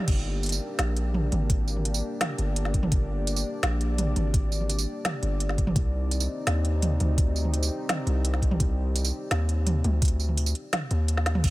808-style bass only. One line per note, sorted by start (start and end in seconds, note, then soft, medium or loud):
0.08 0.60 G1 medium
0.79 1.31 A#1 loud
1.32 2.02 G#1 loud
2.39 2.90 G1 loud
2.92 3.44 G1 medium
3.63 4.15 A#1 loud
4.16 4.86 G#1 loud
5.23 5.74 G1 loud
5.76 6.28 C2 medium
6.47 6.99 D#2 loud
7.00 7.70 D2 loud
8.07 8.59 C2 loud
8.60 9.12 C2 medium
9.31 9.83 D#2 loud
9.84 10.54 D2 loud
10.91 11.43 D#2 loud
11.44 11.50 G1 medium